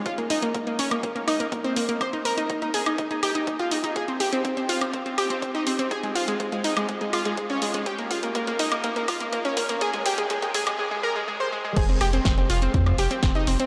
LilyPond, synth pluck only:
\new Staff \with { instrumentName = "Synth pluck" } { \time 4/4 \key f \minor \tempo 4 = 123 f'16 bes16 ees'16 bes16 bes16 bes16 des'16 bes16 bes16 bes16 ees'16 bes16 bes16 c'16 bes16 bes16 | c''16 ees'16 bes'16 ees'16 ees'16 ees'16 aes'16 ees'16 ees'16 ees'16 g'16 ees'16 ees'16 f'16 ees'16 ees'16 | aes'16 c'16 g'16 c'16 c'16 c'16 f'16 c'16 c'16 c'16 g'16 c'16 c'16 ees'16 c'16 c'16 | aes'16 aes16 f'16 aes16 aes16 aes16 ees'16 aes16 aes16 aes16 f'16 aes16 aes16 des'16 aes16 aes16 |
g'16 bes16 f'16 bes16 bes16 bes16 ees'16 bes16 bes16 bes16 f'16 bes16 bes16 des'16 bes16 bes16 | aes'16 aes16 g'16 aes16 aes16 aes16 aes'16 aes16 aes16 aes16 bes'16 aes16 aes16 c''16 aes16 aes16 | aes'16 c'16 g'16 c'16 c'16 c'16 f'16 c'16 c'16 c'16 g'16 c'16 c'16 ees'16 c'16 c'16 | }